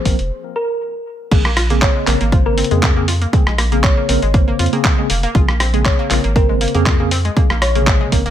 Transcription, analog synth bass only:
0.05 G#1
0.19 F1
1.32 A#1
2.07 A#1
2.21 G#1
2.71 F2
3.47 A#1
4.09 A#1
4.22 G#1
4.59 F2
5.10 F1
5.35 A#1
6.11 A#1
6.24 G#1
6.75 F2
7.50 A#1
8.12 A#1
8.26 G#1

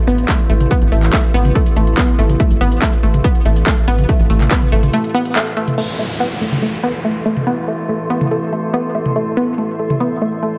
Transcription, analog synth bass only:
0.07 A1
0.50 A1
0.82 A1
0.92 A1
1.34 A1
1.76 A1
2.19 A1
2.51 A1
2.61 A1
3.03 A1
3.45 A1
3.88 A1
4.20 A1
4.30 A1
4.72 A1

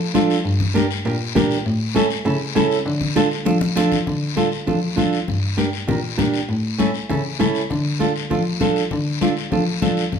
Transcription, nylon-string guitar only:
0.14 D4 F4 A4
0.74 D4 G4 A#4
1.05 D4 G4 A#4
1.35 D4 G4 A#4
1.94 C#4 E4 A4
2.25 C#4 E4 A4
2.55 C#4 E4 A4
3.16 D4 F4 A4
3.45 D4 F4 A4
3.76 D4 F4 A4
4.36 D4 F4 A4
4.67 D4 F4 A4
4.96 D4 F4 A4
5.57 D4 G4 A#4
5.87 D4 G4 A#4
6.17 D4 G4 A#4
6.78 C#4 E4 A4
7.09 C#4 E4 A4
7.39 C#4 E4 A4
7.99 D4 F4 A4
8.30 D4 F4 A4
8.60 D4 F4 A4
9.21 D4 F4 A4
9.52 D4 F4 A4
9.82 D4 F4 A4

